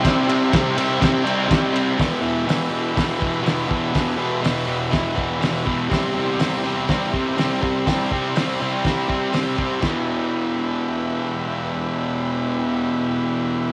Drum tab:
CC |--------|--------|--------|--------|
RD |xxxxxxxx|--------|--------|--------|
HH |--------|o-o-o-o-|o-o-o-o-|o-o-o-o-|
SD |o-o-o-o-|o-o-o-o-|o-o-o-o-|o-o-o-o-|
BD |o-o-o-o-|o---oo-o|o---oo-o|o---oo-o|

CC |--------|x-------|--------|
RD |--------|--------|--------|
HH |o-o-o-o-|--------|--------|
SD |o-o-o-o-|o-------|--------|
BD |oo--oo-o|o-------|--------|